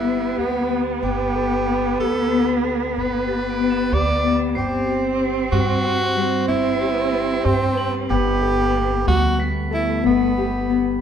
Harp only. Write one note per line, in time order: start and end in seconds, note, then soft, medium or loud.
0.00 2.32 G3 medium
0.00 0.37 G4 medium
0.00 1.27 A4 medium
0.04 0.70 B3 medium
0.37 1.99 G4 medium
0.70 1.02 B3 medium
1.02 1.66 B3 medium
1.35 2.63 A4 medium
1.67 2.31 B3 medium
1.99 3.27 G4 medium
2.32 2.96 B3 medium
2.64 4.83 A4 medium
2.96 3.59 B3 medium
3.27 3.91 G4 medium
3.60 4.24 B3 medium
3.92 4.87 G4 medium
4.24 4.61 B3 medium
4.55 5.20 C4 medium
4.88 6.80 G4 medium
5.20 5.84 C4 medium
5.52 6.15 G3 medium
5.84 6.47 C4 medium
6.16 8.15 G3 medium
6.48 7.12 C4 medium
6.80 7.44 G4 medium
7.12 7.83 C4 medium
7.44 9.80 G4 medium
7.77 9.82 B4 medium
8.09 8.74 B3 medium
8.41 9.70 A4 medium
8.74 9.38 B3 medium
9.06 11.01 G3 medium
9.38 10.03 B3 medium
9.71 11.01 A4 medium
10.03 10.70 B3 medium
10.37 11.01 G4 medium
10.70 11.01 B3 medium